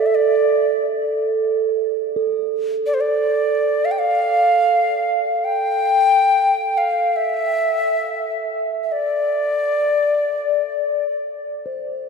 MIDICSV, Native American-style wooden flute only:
0, 0, Header, 1, 2, 480
1, 0, Start_track
1, 0, Tempo, 500000
1, 11608, End_track
2, 0, Start_track
2, 0, Title_t, "Native American-style wooden flute"
2, 0, Program_c, 0, 77
2, 58, Note_on_c, 0, 76, 56
2, 143, Note_on_c, 0, 74, 67
2, 158, Note_off_c, 0, 76, 0
2, 812, Note_off_c, 0, 74, 0
2, 2749, Note_on_c, 0, 74, 62
2, 2822, Note_on_c, 0, 72, 61
2, 2837, Note_off_c, 0, 74, 0
2, 2886, Note_on_c, 0, 74, 65
2, 2900, Note_off_c, 0, 72, 0
2, 3696, Note_on_c, 0, 77, 76
2, 3711, Note_off_c, 0, 74, 0
2, 3756, Note_on_c, 0, 79, 66
2, 3770, Note_off_c, 0, 77, 0
2, 3829, Note_on_c, 0, 77, 82
2, 3843, Note_off_c, 0, 79, 0
2, 5227, Note_on_c, 0, 79, 89
2, 5242, Note_off_c, 0, 77, 0
2, 6504, Note_on_c, 0, 77, 69
2, 6518, Note_off_c, 0, 79, 0
2, 6876, Note_on_c, 0, 76, 85
2, 6890, Note_off_c, 0, 77, 0
2, 8305, Note_off_c, 0, 76, 0
2, 8483, Note_on_c, 0, 76, 45
2, 8563, Note_on_c, 0, 74, 73
2, 8577, Note_off_c, 0, 76, 0
2, 10707, Note_off_c, 0, 74, 0
2, 11608, End_track
0, 0, End_of_file